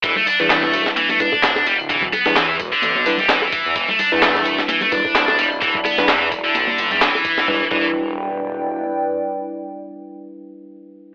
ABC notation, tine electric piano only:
X:1
M:4/4
L:1/16
Q:"Swing 16ths" 1/4=129
K:Em
V:1 name="Tine electric piano"
z3 [G,DEB]6- [G,DEB] [G,DEB] z4 z | z3 [G,DEB] z6 [G,DEB] z4 z | z3 [G,DEB]6- [G,DEB] [G,DEB] z4 z | z3 [G,DEB] z12 |
[G,DEB] z [G,DEB]12- [G,DEB]2- | [G,DEB]16 |]